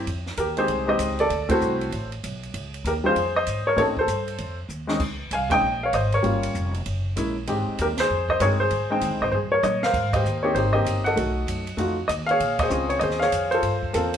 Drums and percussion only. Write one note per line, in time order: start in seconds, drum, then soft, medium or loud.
0.07 ride medium
0.27 snare soft
0.37 hi-hat pedal medium
0.37 ride medium
0.57 ride soft
0.68 ride medium
0.99 hi-hat pedal medium
0.99 ride medium
1.19 ride soft
1.30 ride medium
1.49 kick medium
1.49 ride medium
1.61 hi-hat pedal soft
1.81 ride soft
1.92 ride medium
2.12 ride soft
2.24 hi-hat pedal medium
2.24 ride medium
2.43 ride soft
2.54 ride medium
2.74 ride soft
2.85 hi-hat pedal soft
2.85 ride medium
3.16 ride medium
3.47 hi-hat pedal medium
3.47 ride medium
3.78 ride medium
3.97 kick soft
4.08 hi-hat pedal medium
4.08 ride medium
4.28 ride soft
4.38 ride medium
4.69 hi-hat pedal medium
4.89 snare medium
5.00 kick medium
5.00 crash medium
5.31 hi-hat pedal soft
5.31 ride medium
5.50 kick medium
5.50 ride medium
5.93 hi-hat pedal medium
5.93 ride medium
6.12 ride soft
6.24 ride soft
6.43 ride medium
6.55 hi-hat pedal medium
6.74 ride soft
6.86 ride medium
7.17 hi-hat pedal medium
7.17 ride medium
7.47 ride medium
7.78 hi-hat pedal soft
7.78 ride medium
7.97 snare medium
7.97 ride medium
8.29 kick soft
8.40 hi-hat pedal medium
8.40 ride medium
8.70 ride medium
9.01 hi-hat pedal soft
9.01 ride medium
9.32 floor tom soft
9.63 hi-hat pedal medium
9.63 high tom medium
9.83 snare medium
9.94 kick medium
9.94 crash medium
10.13 kick medium
10.13 ride medium
10.25 hi-hat pedal medium
10.56 ride medium
10.86 hi-hat pedal medium
10.86 ride medium
11.06 ride soft
11.17 ride medium
11.48 hi-hat pedal medium
11.48 ride medium
11.67 ride soft
11.78 ride medium
12.09 hi-hat pedal medium
12.09 ride medium
12.29 ride soft
12.40 ride medium
12.59 kick medium
12.59 ride medium
12.70 hi-hat pedal medium
12.90 ride soft
13.01 ride medium
13.11 snare soft
13.21 snare soft
13.32 hi-hat pedal medium
13.32 ride medium
13.52 ride soft
13.63 ride medium
13.83 kick soft
13.94 hi-hat pedal medium
13.94 ride medium
14.14 ride medium